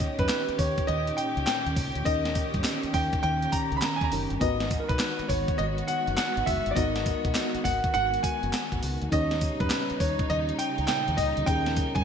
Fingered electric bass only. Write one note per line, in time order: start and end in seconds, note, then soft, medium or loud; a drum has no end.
0.19 0.27 F#2 medium
0.49 muted fingered electric bass stroke medium
0.59 0.73 D#2 loud
0.89 1.10 D#2 loud
1.37 1.45 C#2 medium
1.66 1.74 D#2 medium
1.77 1.91 C#2 medium
1.96 2.03 D2 medium
2.06 2.42 D#2 loud
2.54 2.62 G2 medium
2.84 muted fingered electric bass stroke medium
2.94 3.08 D#2 loud
3.24 3.45 D#2 loud
3.72 3.80 C#2 medium
4.01 4.09 D#2 medium
4.12 4.26 F#1 loud
4.31 4.39 G1 medium
4.41 4.77 G#1 loud
4.90 4.97 B1 medium
5.19 muted fingered electric bass stroke medium
5.29 5.43 G#1 medium
5.60 5.81 G#1 loud
6.08 6.15 F#1 medium
6.37 6.45 G#1 medium
6.47 6.61 F#1 loud
6.67 6.74 G1 medium
6.77 7.12 G#1 loud
7.25 7.33 B1 medium
7.55 muted fingered electric bass stroke medium
7.65 7.79 G#1 loud
7.95 8.17 G#1 loud
8.44 8.51 F#1 medium
8.72 8.80 G#1 medium
8.83 8.97 C#2 loud
9.02 9.10 D2 medium
9.12 9.48 D#2 loud
9.60 9.68 F#2 medium
9.91 muted fingered electric bass stroke medium
10.00 10.14 D#2 loud
10.30 10.51 D#2 loud
10.79 10.86 C#2 medium
11.08 11.16 D#2 medium
11.18 11.32 C#2 medium
11.37 11.45 D2 medium
11.48 11.83 D#2 loud
11.96 12.03 G2 medium